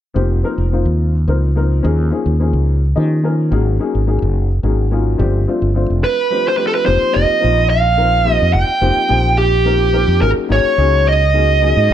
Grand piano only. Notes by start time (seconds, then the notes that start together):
0.14 F3 A#3 C4 D#4 G4
0.43 F3 A#3 C4 D#4 A#4
0.71 F3 A#3 C4 D#4 F4
1.27 F3 A#3 C4 D#4 A#4
1.55 F3 A#3 C4 D#4 A#4
1.83 F3 A#3 C#4 D#4 G#4
2.10 F3 A#3 C#4 D#4 G#4
2.40 F3 A#3 C#4 D#4 G#4
2.96 F3 A#3 C#4 D#4 G4 D#5
3.23 F3 A#3 C#4 D#4 A#4 G#5
3.51 F#3 A#3 C#4 D#4 G#4
3.79 F#3 A#3 C#4 D#4 G#4
4.07 F#3 A#3 C#4 D#4 G#4
4.63 F#3 A#3 C#4 D#4 G#4
4.91 F#3 A#3 C#4 D#4 F4
5.18 F3 A3 C4 D4 G4
5.47 F3 A3 C4 D4 F4
5.74 F3 A3 C4 D4 F4
6.30 F3 A3 C4 D4 G4
6.57 F3 A3 C4 D4 G4
6.84 F3 A#3 C4 D#4 G4
7.12 F3 A#3 C4 D#4 G4
7.40 F3 A#3 C4 D#4 F4
7.97 F3 A#3 C4 D#4 A#4
8.24 F3 A#3 C4 D#4 G4
8.81 F3 A#3 C4 D#4 G4
9.08 F3 A#3 C4 D#4 G4
9.64 F3 A#3 C4 D#4 A#4
9.93 F3 A#3 C4 D#4 A#4
10.21 F#3 A#3 C#4 D#4 G#4
10.48 F#3 A#3 C#4 D#4 G#4
10.76 F#3 A#3 C#4 D#4 G#4
11.34 F#3 A#3 C#4 D#4 G#4
11.61 F#3 A#3 C#4 D#4 G#4